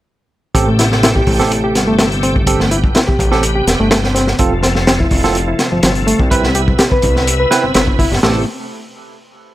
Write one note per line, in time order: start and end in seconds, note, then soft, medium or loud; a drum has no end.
0.55 1.22 A1 loud
0.55 8.19 C3 medium
0.55 2.45 A3 medium
0.55 0.68 C4 medium
0.55 0.68 G4 medium
0.55 4.35 G4 medium
0.55 0.68 A4 medium
0.55 kick loud
0.55 closed hi-hat medium
0.68 0.78 A3 medium
0.79 0.85 E4 loud
0.79 snare soft
0.79 closed hi-hat medium
0.92 snare soft
1.03 1.09 E4 loud
1.03 snare loud
1.03 closed hi-hat medium
1.16 1.62 G4 medium
1.16 kick loud
1.27 1.76 A1 loud
1.27 kick loud
1.27 open hi-hat medium
1.39 1.51 C4 medium
1.39 1.51 G4 medium
1.39 1.51 A4 loud
1.39 snare soft
1.51 closed hi-hat medium
1.64 1.75 G4 medium
1.75 2.90 G1 medium
1.75 snare medium
1.75 closed hi-hat medium
1.88 1.96 A3 loud
1.99 2.04 A3 loud
1.99 snare loud
1.99 closed hi-hat medium
2.12 closed hi-hat soft
2.23 2.35 C4 loud
2.23 closed hi-hat medium
2.36 kick medium
2.47 4.37 B3 medium
2.47 2.60 C4 medium
2.47 2.60 G4 medium
2.47 2.60 A4 medium
2.47 kick loud
2.47 closed hi-hat medium
2.60 2.71 A3 medium
2.60 snare soft
2.71 2.77 E4 loud
2.71 closed hi-hat medium
2.84 kick loud
2.95 3.00 E4 loud
2.95 snare loud
2.95 closed hi-hat medium
3.08 3.54 G4 medium
3.08 kick loud
3.19 3.62 A1 loud
3.19 kick medium
3.19 closed hi-hat medium
3.31 3.43 C4 medium
3.31 3.43 G4 medium
3.31 3.43 A4 loud
3.31 snare soft
3.43 closed hi-hat medium
3.56 3.66 G4 medium
3.67 3.76 E1 medium
3.67 snare medium
3.67 closed hi-hat medium
3.80 4.34 G1 loud
3.80 3.88 A3 loud
3.91 3.96 A3 loud
3.91 snare loud
3.91 closed hi-hat medium
4.04 snare medium
4.15 4.27 C4 loud
4.15 snare soft
4.15 closed hi-hat medium
4.27 snare soft
4.39 5.06 F1 loud
4.39 6.29 F3 medium
4.39 6.29 A3 medium
4.39 4.52 C4 medium
4.39 4.52 F4 medium
4.39 4.52 A4 medium
4.39 kick loud
4.39 closed hi-hat medium
4.52 4.62 F3 medium
4.63 4.69 C4 loud
4.63 snare soft
4.63 closed hi-hat medium
4.75 snare soft
4.87 4.93 C4 loud
4.87 snare loud
4.87 closed hi-hat medium
5.00 5.46 E4 medium
5.00 kick loud
5.11 5.54 F1 loud
5.11 kick loud
5.11 open hi-hat medium
5.24 5.35 C4 medium
5.24 5.35 F4 medium
5.24 5.35 A4 loud
5.24 snare medium
5.35 closed hi-hat medium
5.48 5.58 E4 medium
5.59 snare medium
5.59 closed hi-hat medium
5.72 5.81 G1 soft
5.72 5.80 F3 loud
5.83 6.14 G1 medium
5.83 5.89 F3 loud
5.83 snare loud
5.83 closed hi-hat medium
5.95 closed hi-hat soft
6.07 6.19 A3 loud
6.07 closed hi-hat medium
6.19 6.74 C2 loud
6.19 kick loud
6.30 8.21 B3 medium
6.30 6.44 C4 medium
6.30 8.21 E4 medium
6.30 6.44 E4 medium
6.30 6.44 B4 medium
6.30 kick loud
6.30 closed hi-hat medium
6.43 6.54 C4 medium
6.43 snare soft
6.55 6.61 G4 loud
6.55 closed hi-hat medium
6.68 kick medium
6.78 6.84 G4 loud
6.78 snare loud
6.78 closed hi-hat medium
6.92 7.38 B4 medium
6.92 kick loud
7.02 7.46 C2 loud
7.02 kick loud
7.02 closed hi-hat medium
7.16 snare soft
7.27 closed hi-hat medium
7.40 7.50 B4 medium
7.51 7.64 C4 loud
7.51 7.64 E4 medium
7.51 7.64 B4 loud
7.51 snare soft
7.51 closed hi-hat medium
7.63 7.73 G1 soft
7.63 7.72 C4 loud
7.74 8.06 G1 medium
7.74 7.80 C4 loud
7.74 snare loud
7.74 closed hi-hat medium
7.88 kick medium
7.99 8.11 E4 loud
7.99 kick medium
7.99 open hi-hat medium
8.11 8.20 G1 medium
8.11 snare soft
8.23 8.45 A1 loud
8.23 8.45 C3 medium
8.23 8.45 A3 medium
8.23 8.41 C4 medium
8.23 8.41 G4 medium
8.23 8.45 G4 medium
8.23 8.41 A4 loud
8.23 snare loud
8.23 crash medium